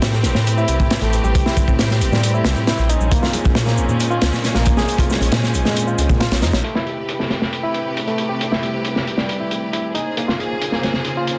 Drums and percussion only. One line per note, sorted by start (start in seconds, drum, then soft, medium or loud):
0.02 snare loud
0.02 closed hi-hat medium
0.02 shaker soft
0.13 snare soft
0.13 shaker soft
0.23 snare soft
0.23 closed hi-hat medium
0.23 shaker medium
0.35 snare soft
0.35 low conga medium
0.35 shaker soft
0.47 closed hi-hat loud
0.47 shaker soft
0.58 shaker soft
0.68 closed hi-hat medium
0.68 shaker medium
0.80 kick loud
0.80 shaker soft
0.90 snare loud
0.90 closed hi-hat medium
0.90 shaker soft
1.01 closed hi-hat soft
1.01 low conga medium
1.01 shaker soft
1.13 closed hi-hat medium
1.13 shaker medium
1.24 high conga medium
1.24 shaker soft
1.35 kick loud
1.35 closed hi-hat medium
1.35 shaker soft
1.46 snare medium
1.46 low conga medium
1.46 shaker soft
1.57 kick medium
1.57 closed hi-hat medium
1.57 muted conga soft
1.57 high conga medium
1.57 shaker medium
1.67 kick medium
1.67 muted conga medium
1.67 shaker soft
1.79 snare loud
1.79 closed hi-hat medium
1.79 shaker soft
1.90 snare soft
1.90 shaker soft
2.01 closed hi-hat medium
2.01 shaker medium
2.12 snare soft
2.12 low conga medium
2.12 shaker soft
2.23 closed hi-hat loud
2.23 shaker soft
2.35 shaker soft
2.45 snare loud
2.45 closed hi-hat medium
2.45 muted conga soft
2.45 shaker medium
2.57 shaker soft
2.67 snare loud
2.67 closed hi-hat medium
2.67 shaker soft
2.79 shaker soft
2.89 closed hi-hat medium
2.89 shaker medium
3.01 high conga medium
3.01 shaker soft
3.12 kick loud
3.12 closed hi-hat medium
3.12 shaker soft
3.23 snare medium
3.23 low conga medium
3.23 shaker soft
3.33 closed hi-hat medium
3.33 muted conga soft
3.33 high conga medium
3.33 shaker medium
3.44 kick loud
3.44 muted conga medium
3.44 shaker soft
3.55 snare loud
3.55 closed hi-hat medium
3.55 shaker soft
3.67 snare soft
3.67 shaker soft
3.78 shaker medium
3.89 low conga medium
3.89 shaker soft
4.00 closed hi-hat medium
4.00 shaker soft
4.11 shaker soft
4.22 snare loud
4.22 closed hi-hat medium
4.22 shaker medium
4.33 snare soft
4.33 shaker soft
4.44 snare soft
4.44 closed hi-hat medium
4.44 shaker soft
4.55 snare soft
4.55 low conga medium
4.55 shaker soft
4.65 kick medium
4.65 closed hi-hat medium
4.65 shaker medium
4.76 snare medium
4.76 high conga medium
4.76 shaker soft
4.88 closed hi-hat medium
4.88 shaker soft
4.98 kick loud
4.98 closed hi-hat medium
4.98 low conga medium
4.98 shaker soft
5.10 snare medium
5.10 muted conga soft
5.10 high conga medium
5.10 shaker medium
5.21 closed hi-hat medium
5.21 muted conga medium
5.21 shaker soft
5.32 snare loud
5.32 closed hi-hat medium
5.32 shaker soft
5.43 snare soft
5.43 shaker soft
5.54 closed hi-hat medium
5.54 shaker medium
5.65 snare soft
5.65 low conga medium
5.65 shaker soft
5.76 closed hi-hat medium
5.76 shaker soft
5.88 shaker soft
5.98 closed hi-hat medium
5.98 muted conga medium
5.98 high conga medium
5.98 shaker medium
6.09 kick loud
6.09 shaker soft
6.20 snare loud
6.20 closed hi-hat medium
6.20 shaker soft
6.31 snare loud
6.31 closed hi-hat medium
6.31 shaker soft
6.42 snare loud
6.42 closed hi-hat medium
6.42 shaker medium
6.53 snare loud
6.53 closed hi-hat medium
6.53 high conga medium
6.53 shaker soft
6.64 closed hi-hat medium
6.75 snare medium
6.87 closed hi-hat medium
7.09 closed hi-hat medium
7.20 snare soft
7.30 snare soft
7.30 closed hi-hat medium
7.42 snare soft
7.53 closed hi-hat medium
7.74 closed hi-hat medium
7.97 closed hi-hat medium
8.07 closed hi-hat soft
8.18 closed hi-hat medium
8.41 closed hi-hat medium
8.52 snare soft
8.63 closed hi-hat medium
8.85 closed hi-hat medium
8.96 snare soft
9.07 closed hi-hat medium
9.18 snare soft
9.29 closed hi-hat medium
9.51 closed hi-hat medium
9.73 closed hi-hat medium
9.95 closed hi-hat medium
10.17 closed hi-hat medium
10.29 snare soft
10.40 closed hi-hat medium
10.61 closed hi-hat medium
10.72 snare soft
10.83 snare soft
10.83 closed hi-hat medium
10.93 snare soft
11.04 closed hi-hat medium
11.27 closed hi-hat medium